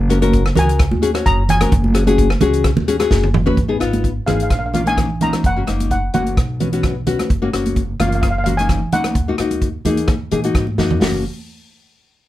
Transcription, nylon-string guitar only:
0.09 0.17 C#4 medium
0.09 0.17 F#4 medium
0.09 0.17 A#4 loud
0.22 0.43 C#4 loud
0.22 0.43 F#4 medium
0.22 0.43 A#4 loud
0.56 0.84 C#4 medium
0.56 0.84 F#4 medium
0.56 0.84 A#4 medium
1.02 1.10 C#4 medium
1.02 1.10 F#4 medium
1.02 1.10 G#4 medium
1.14 1.42 C#4 medium
1.14 1.42 F#4 medium
1.14 1.42 C#5 medium
1.61 1.72 C#4 medium
1.61 1.72 F#4 medium
1.61 1.72 A#4 medium
1.94 2.02 C#4 medium
1.94 2.02 F#4 medium
1.94 2.02 G#4 medium
2.07 2.28 C#4 medium
2.07 2.28 F#4 medium
2.07 2.28 G#4 loud
2.41 2.70 C#4 medium
2.41 2.70 F#4 medium
2.41 2.70 G#4 loud
2.88 2.95 C#4 medium
2.88 2.95 F#4 medium
2.88 2.95 G#4 loud
2.99 3.27 C#4 medium
2.99 3.28 F#4 medium
2.99 3.27 G#4 medium
3.46 3.57 C#4 loud
3.46 3.57 F#4 medium
3.46 3.57 B4 loud
3.68 3.76 B3 medium
3.68 3.76 D#4 medium
3.68 3.76 G#4 medium
3.80 4.09 B3 medium
3.80 4.09 D#4 medium
3.80 4.09 F4 medium
4.27 4.50 B3 medium
4.27 4.50 D#4 medium
4.27 4.50 G#4 medium
4.74 4.81 A#3 medium
4.74 4.81 C#4 medium
4.74 4.81 F4 medium
4.86 5.07 A#3 medium
4.86 5.07 C#4 medium
4.86 5.07 D#4 medium
5.21 5.42 A#3 medium
5.21 5.42 C#4 medium
5.21 5.42 D#4 medium
5.56 5.63 A#3 medium
5.56 5.63 C#4 medium
5.56 5.63 F#4 medium
5.67 5.95 A#3 medium
5.67 5.95 C#4 medium
5.67 5.95 D#4 medium
6.14 6.37 A#3 medium
6.14 6.37 C#4 medium
6.14 6.37 F#4 medium
6.60 6.68 B3 medium
6.60 6.67 C#4 medium
6.60 6.67 F#4 medium
6.73 6.93 B3 medium
6.73 6.94 C#4 medium
6.73 6.93 F#4 medium
7.07 7.28 B3 medium
7.07 7.28 C#4 medium
7.07 7.28 F#4 medium
7.42 7.48 A#3 medium
7.42 7.49 C#4 medium
7.42 7.49 F#4 medium
7.53 7.81 A#3 medium
7.53 7.81 C#4 medium
7.53 7.81 F#4 medium
8.00 8.28 A#3 medium
8.00 8.28 C#4 medium
8.00 8.28 F4 medium
8.46 8.53 A#3 medium
8.46 8.54 C#4 medium
8.46 8.53 F#4 medium
8.59 8.80 A#3 medium
8.59 8.80 C#4 medium
8.59 8.79 D#4 medium
8.93 9.14 A#3 medium
8.93 9.14 C#4 medium
8.93 9.14 D#4 medium
9.28 9.35 A#3 medium
9.28 9.35 D#4 medium
9.28 9.35 F#4 medium
9.40 9.68 A#3 medium
9.40 9.67 D#4 medium
9.40 9.68 F#4 medium
9.85 10.14 A#3 medium
9.85 10.14 D#4 medium
9.85 10.14 G#4 loud
10.32 10.39 A#3 medium
10.32 10.39 D#4 medium
10.32 10.39 G#4 loud
10.44 10.65 A#3 medium
10.44 10.65 D#4 medium
10.44 10.65 F#4 medium
10.79 11.00 A#3 medium
10.79 10.99 D#4 medium
10.79 11.00 F#4 loud
11.01 11.23 A#3 medium
11.01 11.23 C#4 medium
11.01 11.23 F#4 medium

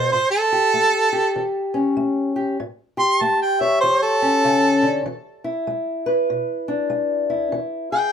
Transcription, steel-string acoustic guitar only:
0.00 0.12 B2 medium
0.13 0.69 A2 medium
0.52 1.12 G4 medium
0.74 1.31 A3 medium
1.13 2.35 G4 medium
1.36 1.93 E3 medium
1.74 2.57 C#4 medium
1.97 2.54 A3 medium
2.36 2.57 G4 medium
2.60 3.16 A2 medium
2.97 5.04 G4 medium
3.21 3.78 A3 medium
3.61 5.05 C#5 medium
3.83 4.40 E3 medium
4.22 5.04 C#4 medium
4.44 4.82 C#3 medium
4.83 5.05 D3 medium
5.06 5.63 E3 medium
5.44 7.29 E4 medium
5.67 6.25 G#3 medium
6.06 8.12 B4 medium
6.30 6.87 B2 medium
6.68 7.55 D4 medium
6.90 7.48 G#3 medium
7.30 7.92 E4 medium
7.52 8.10 E3 medium
7.92 8.12 G#4 medium

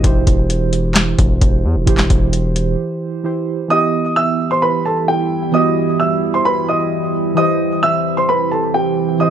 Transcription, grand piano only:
3.70 4.14 D#5 medium
3.70 4.13 D#6 loud
4.16 4.49 E5 medium
4.16 4.49 E6 loud
4.51 4.61 C5 medium
4.51 4.61 C6 medium
4.62 4.83 B4 medium
4.62 4.82 B5 loud
4.86 5.06 A4 medium
4.86 5.06 A5 medium
5.08 5.52 G4 medium
5.08 5.51 G5 medium
5.54 5.97 D#5 medium
5.54 5.97 D#6 medium
6.00 6.32 E5 medium
6.00 6.32 E6 medium
6.34 6.45 C5 medium
6.34 6.44 C6 medium
6.45 6.66 B4 medium
6.45 6.66 B5 loud
6.69 7.33 D#5 medium
6.69 7.33 D#6 medium
7.37 7.80 D#5 medium
7.37 7.80 D#6 loud
7.83 8.15 E5 medium
7.83 8.15 E6 loud
8.17 8.28 C5 medium
8.17 8.27 C6 medium
8.29 8.49 B4 medium
8.29 8.49 B5 medium
8.52 8.72 A4 medium
8.52 8.72 A5 medium
8.74 9.18 G4 medium
8.74 9.17 G5 medium
9.20 9.30 D#5 medium
9.20 9.30 D#6 medium

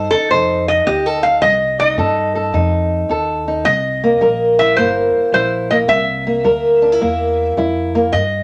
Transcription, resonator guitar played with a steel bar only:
0.11 0.30 A4 medium
0.31 0.68 C5 medium
0.68 0.85 D#5 medium
0.87 1.21 D#5 medium
1.23 1.42 F5 medium
1.42 1.76 D#5 loud
1.80 3.43 D#5 medium
3.65 4.59 D#5 medium
4.59 4.76 E5 medium
4.77 5.33 C5 medium
5.34 5.72 C5 medium
5.71 5.76 D#5 medium
5.89 7.53 E5 medium
8.13 8.43 D#5 medium

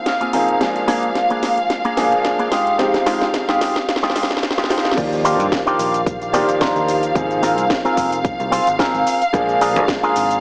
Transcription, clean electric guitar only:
0.07 0.32 F5 medium
0.21 0.55 A#3 medium
0.21 0.55 C4 medium
0.21 0.55 F4 medium
0.21 0.55 G#4 medium
0.33 0.59 A#5 medium
0.88 1.09 A#3 loud
0.88 1.09 D4 loud
0.88 1.10 G#4 loud
1.30 1.58 A#3 medium
1.30 1.58 D4 medium
1.30 1.58 G#4 medium
1.85 2.12 A#3 loud
1.85 2.12 D4 loud
1.85 2.13 G#4 loud
2.39 2.51 A#3 medium
2.39 2.52 D4 medium
2.39 2.52 G#4 medium
2.51 2.96 G#3 medium
2.51 2.96 D#4 medium
2.51 2.97 F4 medium
2.51 2.97 G4 loud
3.06 3.27 G#3 loud
3.06 3.27 D#4 loud
3.06 3.28 F4 loud
3.06 3.28 G4 loud
3.48 3.76 G#3 medium
3.48 3.76 D#4 medium
3.48 3.76 F4 medium
3.48 3.76 G4 loud
4.03 4.30 G#3 loud
4.03 4.30 D#4 loud
4.03 4.30 F4 loud
4.03 4.31 G4 loud
4.58 4.91 G#3 medium
4.58 4.91 D#4 medium
4.58 4.91 F4 medium
4.58 4.92 G4 loud
5.24 5.46 D4 loud
5.24 5.46 D#4 loud
5.24 5.46 F4 loud
5.24 5.46 G4 loud
5.66 6.00 D4 medium
5.66 6.00 D#4 medium
5.66 6.00 F4 medium
5.66 6.01 G4 loud
6.33 6.48 D4 loud
6.33 6.49 D#4 loud
6.33 6.49 F4 loud
6.33 6.49 G4 loud
6.61 7.03 D4 medium
6.61 7.03 D#4 medium
6.61 7.03 F4 medium
6.61 7.04 A#4 medium
7.43 7.64 C4 loud
7.43 7.64 F4 loud
7.43 7.64 G#4 loud
7.43 7.64 A#4 loud
7.85 8.18 C4 medium
7.85 8.18 F4 medium
7.85 8.19 G#4 medium
7.85 8.19 A#4 loud
8.51 8.67 C4 loud
8.51 8.67 F4 loud
8.51 8.67 G#4 loud
8.51 8.67 C5 loud
8.79 9.21 C4 medium
8.79 9.21 F4 medium
8.79 9.22 G#4 medium
8.79 9.22 A#4 loud
9.61 9.82 D4 loud
9.61 9.82 F4 loud
9.61 9.82 G#4 loud
9.61 9.83 A#4 loud
10.03 10.37 D4 medium
10.03 10.37 F4 medium
10.03 10.37 G#4 medium
10.03 10.37 A#4 loud

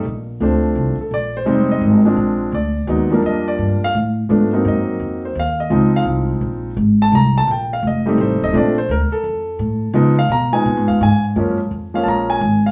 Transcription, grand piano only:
0.40 0.94 F3 medium
0.40 0.94 A3 medium
0.40 0.95 C4 medium
0.40 0.95 D4 medium
0.40 0.96 C5 medium
1.01 1.12 A4 medium
1.14 1.35 D5 medium
1.37 1.68 C5 medium
1.46 2.00 G3 medium
1.46 2.00 G#3 medium
1.46 2.00 C4 medium
1.46 2.00 D#4 medium
1.71 1.83 D#5 medium
2.05 2.50 F3 medium
2.05 2.51 G#3 medium
2.05 2.51 C4 medium
2.05 2.51 D4 medium
2.54 3.08 D5 medium
2.87 3.08 F#3 medium
2.87 3.09 G#3 medium
2.87 3.09 B3 medium
2.87 3.09 D#4 medium
3.10 3.87 F3 medium
3.10 3.87 G3 medium
3.10 3.87 A#3 medium
3.10 3.87 D4 medium
3.10 3.24 A#4 medium
3.26 3.47 D#5 medium
3.48 3.80 D5 medium
3.84 3.95 F5 loud
4.29 4.50 F3 medium
4.29 4.50 A3 medium
4.29 4.51 B3 medium
4.29 4.51 D4 medium
4.53 5.28 F#3 medium
4.53 5.29 A#3 medium
4.53 5.29 C4 medium
4.53 5.29 D#4 medium
4.68 5.21 D#5 medium
5.25 5.37 C5 medium
5.39 5.60 F5 medium
5.60 5.92 D#5 medium
5.70 6.69 F3 medium
5.70 6.69 G#3 medium
5.70 6.70 C4 medium
5.70 6.70 D#4 medium
5.96 6.03 F5 medium
7.02 7.13 A5 loud
7.15 7.36 A#5 loud
7.38 7.49 A5 loud
7.51 7.72 G5 medium
7.73 7.84 F5 medium
7.87 8.07 D#5 medium
8.06 8.51 G3 medium
8.06 8.51 A3 medium
8.06 8.51 C4 medium
8.06 8.52 D#4 medium
8.06 8.20 G4 medium
8.21 8.42 C5 medium
8.44 8.55 D#5 loud
8.53 8.74 F3 medium
8.53 8.74 A3 medium
8.53 8.74 C4 medium
8.53 8.75 D4 medium
8.57 8.78 D5 medium
8.78 8.89 C5 medium
8.91 9.12 A#4 medium
9.12 9.91 A4 medium
9.94 10.15 F3 medium
9.94 10.15 G#3 medium
9.94 10.15 B3 medium
9.94 10.15 D#4 medium
10.19 10.30 F5 medium
10.32 10.53 A#5 loud
10.52 10.98 F3 medium
10.52 10.98 G#3 medium
10.52 10.98 B3 medium
10.52 10.98 D#4 medium
10.52 10.85 G#5 medium
10.88 11.00 F5 medium
11.03 11.24 G#5 loud
11.36 11.56 F3 medium
11.36 11.56 G#3 medium
11.36 11.57 A#3 medium
11.36 11.57 C#4 medium
11.94 12.39 F3 medium
11.94 12.39 G#3 medium
11.94 12.39 A#3 medium
11.94 12.39 C#4 medium
11.94 12.06 F5 medium
12.04 12.06 A5 medium
12.08 12.29 A#5 loud
12.30 12.62 G#5 loud
12.66 12.71 F5 medium

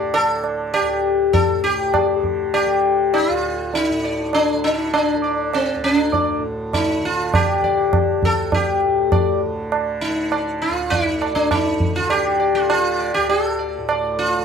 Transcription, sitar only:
0.00 0.12 D5 soft
0.14 0.73 A4 medium
0.74 1.33 G4 medium
1.33 1.63 A4 medium
1.64 2.53 G4 medium
1.94 2.22 D5 soft
2.54 3.13 G4 medium
3.14 3.33 D#4 medium
3.33 3.76 F4 medium
3.75 4.30 D#4 medium
4.04 4.32 D5 soft
4.34 4.64 D4 medium
4.64 4.93 D#4 medium
4.93 5.54 D4 medium
5.24 5.51 D5 soft
5.54 5.83 C4 medium
5.84 6.39 D4 medium
6.14 6.41 D5 soft
6.74 7.04 D#4 medium
7.05 7.34 F4 medium
7.35 8.25 G4 medium
7.64 7.91 D5 soft
8.25 8.54 A4 medium
8.54 9.39 G4 medium
9.12 9.40 D5 soft
10.01 10.63 D#4 medium
10.32 10.59 D5 soft
10.62 10.92 F4 medium
10.90 11.35 D#4 medium
11.21 11.49 D5 soft
11.35 11.51 D4 medium
11.51 11.97 D#4 medium
11.96 12.10 F4 medium
12.10 12.54 G4 medium
12.40 12.67 D5 soft
12.55 12.68 F4 medium
12.70 13.14 F4 medium
13.00 13.27 D5 soft
13.14 13.29 G4 medium
13.29 14.18 A4 medium
13.59 13.87 D5 soft
13.89 14.16 D5 soft
14.19 14.45 F4 medium

